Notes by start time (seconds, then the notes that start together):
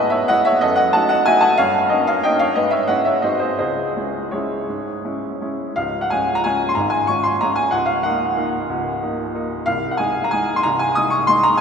Already playing: G#2 G#3 B3 E4 B4 D#5 E5
0.10 C#5 E5
0.28 G#3 B3 E4 D#5 F#5
0.45 C#5 E5
0.61 F#2 A4 D#5
0.76 D#5 F#5
0.93 A3 D#4 F#4 F#5 A5
1.09 D#5 F#5
1.26 A3 D#4 F#4 E5 G#5
1.41 F#5 A5
1.58 G2 C#5 F5
1.89 A#3 C#4 D#4 A#4 D#5
2.07 C#5 F5
2.23 A#3 C#4 D#4 D#5 G5
2.39 C#5 F5
2.55 G#2 B4 D#5
2.71 C#5 E5
2.87 G#3 C#4 E4 D#5 F#5
3.05 C#5 E5
3.22 G#2 G#3 C4 F#4 C5 D#5
3.39 G#4 C5
3.59 C#2 G#4 C5
3.96 G#3 C#4 E4
4.31 G#3 C#4 E4 G#4 C#5
4.69 G#2
5.05 G#3 C#4 E4
5.41 G#3 C#4 E4
5.76 C#1 C#2 F5
6.01 F#5
6.10 G#3 C#4 F4 G#5
6.35 A#5
6.44 G#3 C#4 F4 G#5
6.69 C6
6.75 G#1 G#2 A#5
6.90 G#5
7.07 G#3 C#4 F4 C#6
7.23 C6
7.41 G#3 C#4 F4 A#5
7.56 G#5
7.71 C#1 C#2 F#5
7.86 F5
8.03 A#3 D#4 F#5
8.37 A#3 D#4
8.69 C#1 C#2
9.02 A#3 D#4
9.35 A#3 D#4
9.66 C1 C2 F5
9.91 F#5
9.97 G#3 D#4 G#5
10.24 A#5
10.31 G#3 D#4 G#5
10.56 C6
10.63 C1 C2 A#5
10.79 G#5
10.95 G#3 D#4 D#6
11.10 C#6
11.27 G#3 D#4 C6
11.43 A#5
11.57 G#5